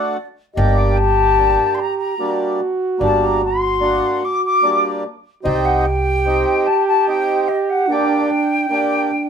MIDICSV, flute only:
0, 0, Header, 1, 2, 480
1, 0, Start_track
1, 0, Key_signature, -2, "minor"
1, 0, Tempo, 811908
1, 338, Time_signature, 3, 2, 24, 8
1, 5496, End_track
2, 0, Start_track
2, 0, Title_t, "Flute"
2, 0, Program_c, 0, 73
2, 0, Note_on_c, 0, 74, 72
2, 154, Note_off_c, 0, 74, 0
2, 320, Note_on_c, 0, 75, 90
2, 460, Note_on_c, 0, 79, 80
2, 469, Note_off_c, 0, 75, 0
2, 574, Note_on_c, 0, 81, 105
2, 583, Note_off_c, 0, 79, 0
2, 1031, Note_on_c, 0, 84, 47
2, 1040, Note_off_c, 0, 81, 0
2, 1060, Note_on_c, 0, 82, 86
2, 1069, Note_off_c, 0, 84, 0
2, 1168, Note_off_c, 0, 82, 0
2, 1172, Note_on_c, 0, 82, 71
2, 1398, Note_off_c, 0, 82, 0
2, 1796, Note_on_c, 0, 81, 87
2, 1918, Note_on_c, 0, 82, 77
2, 1927, Note_off_c, 0, 81, 0
2, 2028, Note_off_c, 0, 82, 0
2, 2039, Note_on_c, 0, 84, 97
2, 2509, Note_on_c, 0, 86, 89
2, 2518, Note_off_c, 0, 84, 0
2, 2624, Note_off_c, 0, 86, 0
2, 2633, Note_on_c, 0, 86, 95
2, 2850, Note_off_c, 0, 86, 0
2, 3212, Note_on_c, 0, 74, 91
2, 3339, Note_on_c, 0, 78, 78
2, 3348, Note_off_c, 0, 74, 0
2, 3463, Note_on_c, 0, 79, 104
2, 3472, Note_off_c, 0, 78, 0
2, 3939, Note_on_c, 0, 81, 91
2, 3947, Note_off_c, 0, 79, 0
2, 4060, Note_off_c, 0, 81, 0
2, 4063, Note_on_c, 0, 81, 98
2, 4173, Note_off_c, 0, 81, 0
2, 4187, Note_on_c, 0, 79, 87
2, 4422, Note_on_c, 0, 75, 73
2, 4431, Note_off_c, 0, 79, 0
2, 4549, Note_on_c, 0, 78, 83
2, 4558, Note_off_c, 0, 75, 0
2, 4683, Note_on_c, 0, 79, 100
2, 4692, Note_off_c, 0, 78, 0
2, 5496, Note_off_c, 0, 79, 0
2, 5496, End_track
0, 0, End_of_file